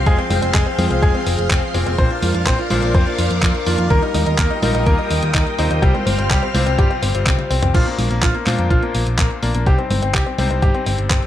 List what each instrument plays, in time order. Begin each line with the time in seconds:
Already playing: string machine C5 F5 C6
0.06 picked electric bass F1, electric grand piano F3 C4 F4 G#4 F5, grand piano G#3 G#4, string machine G#4, kick, closed hi-hat
0.18 grand piano C4, closed hi-hat
0.30 picked electric bass F1, grand piano C4, open hi-hat, high conga
0.42 picked electric bass F1, grand piano C4, closed hi-hat
0.54 picked electric bass F1, grand piano G#3 G#4, kick, clap, closed hi-hat
0.66 grand piano C4, closed hi-hat
0.78 picked electric bass F2, electric grand piano F3 C4 F4 G#4 F5, grand piano C4, open hi-hat, high conga
0.90 picked electric bass C2, grand piano C4, closed hi-hat
1.02 picked electric bass F1, grand piano G#3 G#4, kick, closed hi-hat
1.15 grand piano C4, closed hi-hat
1.27 picked electric bass F1, grand piano C4, open hi-hat
1.39 picked electric bass F1, closed hi-hat
1.50 picked electric bass F1, grand piano C4, kick, clap, closed hi-hat
1.63 closed hi-hat
1.74 picked electric bass F1, electric grand piano A#2 C4 F4 G#4 G5, grand piano C4, open hi-hat
1.86 picked electric bass F1, grand piano C4, closed hi-hat
1.98 picked electric bass A#1, electric grand piano A#2 A#3 D4 F4 C5, grand piano C4 C5, string machine A#4 D5, kick, closed hi-hat
2.10 grand piano F4, closed hi-hat
2.23 picked electric bass F2, grand piano F4, open hi-hat, high conga
2.34 picked electric bass F2, grand piano F4, closed hi-hat
2.46 picked electric bass A#1, grand piano C4 C5, kick, clap, closed hi-hat
2.58 grand piano F4, closed hi-hat
2.70 picked electric bass A#1, electric grand piano A#2 A#3 D4 F4 C5, grand piano F4, open hi-hat, high conga
2.83 picked electric bass A#1, grand piano F4, closed hi-hat
2.94 picked electric bass F2, grand piano C4 C5, kick, closed hi-hat
3.07 grand piano F4, closed hi-hat
3.18 picked electric bass F2, grand piano F4, open hi-hat
3.31 picked electric bass F2, closed hi-hat
3.42 picked electric bass F2, grand piano F4, kick, clap, closed hi-hat
3.55 closed hi-hat
3.66 picked electric bass F2, electric grand piano D#3 A#3 D4 F4 D5, grand piano F4, open hi-hat
3.78 picked electric bass F2, grand piano F4, closed hi-hat
3.90 picked electric bass D#2, electric grand piano G3 D#4 F4 A#4, grand piano A#3 A#4, string machine G5 D#6, kick, closed hi-hat
4.02 grand piano D#4, closed hi-hat
4.14 picked electric bass D#2, grand piano D#4, open hi-hat, high conga
4.26 picked electric bass D#2, grand piano D#4, closed hi-hat
4.38 picked electric bass D#2, grand piano A#3 A#4, kick, clap, closed hi-hat
4.50 grand piano D#4, closed hi-hat
4.63 picked electric bass A#1, electric grand piano G3 D#4 F4 A#4, grand piano D#4, open hi-hat, high conga
4.74 picked electric bass A#1, grand piano D#4, closed hi-hat
4.86 picked electric bass D#2, grand piano A#3 A#4, kick, closed hi-hat
4.99 grand piano D#4, closed hi-hat
5.10 picked electric bass D#2, grand piano D#4, open hi-hat
5.23 picked electric bass D#2, closed hi-hat
5.35 picked electric bass D#2, grand piano D#4, kick, clap, closed hi-hat
5.47 closed hi-hat
5.59 picked electric bass D#2, electric grand piano C3 G3 D#4 F4 C5, grand piano D#4, open hi-hat
5.70 picked electric bass D#2, grand piano D#4, closed hi-hat
5.82 picked electric bass C2, electric grand piano C3 G3 C4 F4 C5, grand piano G3 G4, string machine C5 F6, kick, closed hi-hat
5.94 grand piano C4, closed hi-hat, high conga
6.06 picked electric bass G1, grand piano C4, open hi-hat, high conga
6.18 picked electric bass G1, grand piano C4, closed hi-hat
6.30 picked electric bass C2, grand piano G3 G4, kick, clap, closed hi-hat
6.43 grand piano C4, closed hi-hat
6.54 picked electric bass C2, electric grand piano C3 G3 C4 F4 C5, grand piano C4, open hi-hat, high conga
6.66 picked electric bass C2, grand piano C4, closed hi-hat
6.78 picked electric bass G1, grand piano G3 G4, kick, closed hi-hat
6.90 grand piano C4, closed hi-hat
7.02 picked electric bass G1, grand piano C4, open hi-hat
7.15 picked electric bass G1, electric grand piano C3 G3 C4 F4 C5, closed hi-hat
7.26 picked electric bass C2, grand piano C4, kick, clap, closed hi-hat, high tom
7.39 closed hi-hat, high tom
7.50 picked electric bass C2, grand piano C4, open hi-hat
7.62 picked electric bass C2, grand piano C4, closed hi-hat, mid tom
7.74 picked electric bass A#1, electric grand piano A#2 A#3 D4 F4 C5, grand piano F4, kick, closed hi-hat, crash
7.87 grand piano A#3, closed hi-hat
7.98 picked electric bass A#1, grand piano A#3, open hi-hat, high conga
8.10 picked electric bass A#1, grand piano A#3, closed hi-hat
8.22 picked electric bass A#1, grand piano F4, kick, clap, closed hi-hat
8.34 grand piano A#3, closed hi-hat
8.46 electric grand piano A#2 A#3 D4 F4 C5, picked electric bass A#2, grand piano A#3, clap, open hi-hat, high conga
8.59 picked electric bass F2, grand piano A#3, closed hi-hat
8.70 picked electric bass A#1, grand piano F4, kick, closed hi-hat
8.83 grand piano A#3, closed hi-hat
8.95 picked electric bass A#1, grand piano A#3, open hi-hat
9.07 picked electric bass A#1, closed hi-hat
9.18 picked electric bass A#1, grand piano A#3, kick, clap, closed hi-hat
9.31 closed hi-hat
9.43 picked electric bass A#1, grand piano A#3, electric grand piano A#3 D4 F4 D5, open hi-hat
9.55 picked electric bass A#1, grand piano A#3, closed hi-hat
9.66 picked electric bass C2, electric grand piano C3 G3 C4 D#4 C5, grand piano G4, kick, closed hi-hat
9.79 grand piano C4, closed hi-hat
9.90 picked electric bass G1, grand piano C4, open hi-hat, high conga
10.02 picked electric bass G1, grand piano C4, closed hi-hat
10.14 picked electric bass C2, grand piano G4, kick, clap
10.26 grand piano C4, closed hi-hat
10.38 picked electric bass C2, electric grand piano C3 G3 C4 D#4 C5, grand piano C4, open hi-hat, high conga
10.50 picked electric bass C2, grand piano C4, closed hi-hat
10.62 picked electric bass G1, grand piano G4, kick, closed hi-hat
10.75 grand piano C4, closed hi-hat
10.86 picked electric bass G1, grand piano C4, open hi-hat
10.98 picked electric bass G1, closed hi-hat
11.10 picked electric bass G1, grand piano C4, kick, clap, closed hi-hat
11.22 closed hi-hat